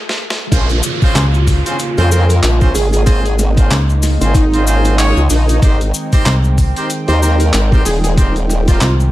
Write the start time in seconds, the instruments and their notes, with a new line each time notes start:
0.09 snare
0.30 snare
0.51 wobble bass A#1, analog synth pad C#3 G#3 A#3 F4, horn section C4 C#4 F4 G#4 C5, kick, closed hi-hat, crash, downlifter, cabasa
0.69 closed hi-hat, cabasa
0.83 cabasa
1.02 horn section C4 C#4 F4 G#4 C5, kick, cabasa
1.15 fm bass C#2, clap, closed hi-hat, cabasa
1.34 cabasa
1.47 kick, open hi-hat, cabasa
1.66 horn section C4 C#4 F4 G#4 C5, closed hi-hat, cabasa
1.79 closed hi-hat, cabasa
1.98 wobble bass F2, horn section C4 C#4 F4 G#4 C5, closed hi-hat, cabasa
2.11 horn section C4 C#4 F4 G#4 C5, digital synth lead A#4, cabasa
2.29 digital synth lead A#4, closed hi-hat, cabasa
2.43 wobble bass A#1, clap, closed hi-hat, cabasa
2.61 horn section C4 C#4 F4 G#4 C5, kick, cabasa
2.74 wobble bass G#1, digital synth lead G#4, open hi-hat, cabasa
2.92 digital synth lead G#4, closed hi-hat, cabasa
3.06 horn section C4 C#4 F4 G#4 C5, analog synth pad D#4, digital synth lead G#4, kick, closed hi-hat, cabasa
3.24 digital synth lead G#4, closed hi-hat, cabasa
3.39 snare, cabasa
3.57 horn section C4 C#4 F4 G#4 C5, kick, closed hi-hat, cabasa
3.71 fm bass C#2, clap, closed hi-hat, cabasa
3.90 cabasa
4.03 snare, open hi-hat, cabasa
4.21 wobble bass G#1, horn section C4 C#4 F4 G#4 C5, closed hi-hat, cabasa
4.34 digital synth lead D#4, kick, closed hi-hat, cabasa
4.53 horn section C4 C#4 F4 G#4 C5, closed hi-hat, cabasa
4.67 horn section C4 C#4 F4 G#4 C5, cabasa
4.85 closed hi-hat, cabasa
4.98 horn section C#4 F4 G#4 C#5, clap, closed hi-hat, cabasa
5.17 wobble bass C#2, cabasa
5.30 wobble bass A#1, digital synth lead D#4, open hi-hat, cabasa
5.49 closed hi-hat, cabasa
5.62 wobble bass G#1, analog synth pad D#3 C4 G5, horn section C4 D#4 G4 A#4 C5, kick, closed hi-hat, cabasa
5.81 closed hi-hat, cabasa
5.94 cabasa
6.12 horn section C4 D#4 G4 A#4 C5, kick, closed hi-hat, cabasa
6.26 fm bass C2, clap, closed hi-hat, cabasa
6.44 cabasa
6.58 kick, open hi-hat, cabasa
6.76 horn section C4 D#4 G4 A#4 C5, closed hi-hat, cabasa
6.90 closed hi-hat, cabasa
7.08 wobble bass D#2, horn section C4 D#4 G4 A#4 C5, closed hi-hat, cabasa
7.22 horn section C4 D#4 G4 A#4 C5, digital synth lead A#4, cabasa
7.40 digital synth lead A#4, closed hi-hat, cabasa
7.53 wobble bass G#1, clap, closed hi-hat, cabasa
7.72 horn section C4 D#4 G4 A#4 C5, kick, cabasa
7.85 wobble bass D#1, digital synth lead G#4, open hi-hat, cabasa
8.04 digital synth lead G#4, closed hi-hat, cabasa
8.17 horn section C4 D#4 G4 A#4 C5, kick, closed hi-hat, cabasa
8.36 closed hi-hat, cabasa
8.49 snare, cabasa
8.68 horn section C4 D#4 G4 A#4 C5, digital synth lead F4, kick, closed hi-hat, cabasa
8.81 fm bass C2, digital synth lead F4, clap, closed hi-hat, cabasa
9.00 cabasa